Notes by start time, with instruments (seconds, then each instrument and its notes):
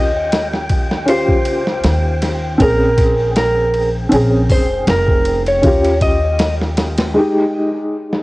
Already playing: upright bass D#2, felt piano C#4 F4 G4, electric slide guitar D#5, synth texture G5
0.32 snare, ride
0.54 snare
0.70 kick, ride
0.91 snare
1.06 felt piano C#4 F4, electric slide guitar C5, ride
1.10 felt piano G4
1.28 kick
1.45 upright bass C#2, ride
1.67 snare
1.84 upright bass D#2, snare, ride
2.22 snare, ride
2.58 upright bass A#1, felt piano C4 C#4, kick, ride
2.62 felt piano G#4, electric slide guitar A#4
2.98 kick, ride
3.36 electric slide guitar A#4, snare, ride
3.74 ride
4.09 upright bass A#1, felt piano C4 C#4, ride
4.14 felt piano G#4
4.49 upright bass F1, electric slide guitar C5, kick, open hi-hat
4.87 upright bass F1, electric slide guitar A#4, snare, ride
5.08 kick
5.25 ride
5.46 electric slide guitar C#5, ride
5.62 upright bass D#2, felt piano C#4 F4, kick, ride
5.67 felt piano G4
5.84 ride
6.01 electric slide guitar D#5, kick, ride
6.39 snare, ride
6.61 snare
6.77 snare, ride
6.98 snare, ride
7.14 felt piano G#3 D#4
7.19 felt piano G4
8.13 snare